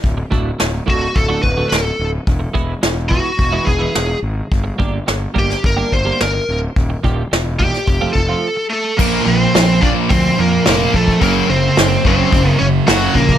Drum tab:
CC |----------------|----------------|----------------|----------------|
HH |o---o---o-------|o-------o-------|o-------o-------|o---o---o-------|
SD |----o-------o---|----o-------o---|----o--o----o---|----o--o--------|
BD |o-o---o-o-o-----|o-o---o-o-o-----|o-o---o-o-o-----|o-o---o-o-o-----|

CC |x---------------|----------------|
HH |----o---o---o---|o---o---o---o---|
SD |----o-------o---|----o-------o---|
BD |o-----o-o-----oo|o-----o-o-----oo|